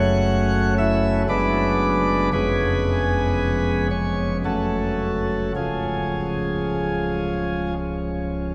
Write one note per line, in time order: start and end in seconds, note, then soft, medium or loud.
0.00 1.26 F#1 medium
0.00 1.26 F#2 medium
0.00 1.26 F#3 medium
0.00 1.26 A3 medium
0.00 1.26 C#4 medium
0.00 0.74 F#4 medium
0.00 0.74 C#5 loud
0.00 0.74 F#5 loud
0.78 1.22 E4 loud
0.78 1.22 E5 loud
1.29 2.29 F#1 medium
1.29 2.29 F#2 medium
1.29 2.29 G#3 medium
1.29 2.29 B3 medium
1.29 2.30 D4 medium
1.29 2.29 B4 medium
1.29 2.29 D5 loud
2.33 4.42 F1 medium
2.33 4.41 F2 medium
2.33 4.41 G#3 medium
2.33 3.87 B3 medium
2.33 3.89 C#4 medium
2.33 3.87 G#4 medium
2.33 3.87 B4 loud
3.91 4.37 C#4 medium
3.91 4.37 C#5 loud
4.45 5.52 F#1 medium
4.45 5.52 F#2 medium
4.45 5.52 F#3 soft
4.45 5.52 A3 medium
4.45 5.52 C#4 soft
4.45 5.52 F#4 medium
4.45 5.52 A4 medium
5.56 8.55 C#1 medium
5.56 8.55 C#2 medium
5.56 8.55 F3 soft
5.56 7.74 G#3 medium
5.56 8.55 C#4 soft
5.56 7.74 F4 medium
5.56 7.74 G#4 medium